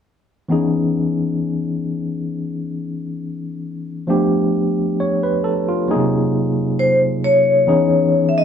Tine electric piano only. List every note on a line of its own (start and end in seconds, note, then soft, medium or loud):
0.48 4.03 E3 medium
0.48 4.04 B3 medium
0.48 4.04 C#4 soft
0.48 4.05 D#4 soft
0.48 4.05 G#4 medium
4.07 5.83 F3 medium
4.07 5.83 A3 medium
4.07 5.84 B3 soft
4.07 5.84 D4 soft
4.07 4.97 G4 medium
5.00 5.22 C#5 medium
5.23 5.42 B4 medium
5.44 5.66 A4 medium
5.68 6.10 F4 medium
5.88 7.63 F#3 medium
5.88 7.63 A#3 medium
5.88 5.95 B3 soft
5.88 7.64 D#4 medium
5.88 7.65 G#4 medium
5.96 7.67 C3 medium
7.67 8.45 E3 medium
7.67 8.45 B3 medium
7.67 8.45 C#4 soft
7.67 8.45 D#4 medium
7.67 8.45 G#4 medium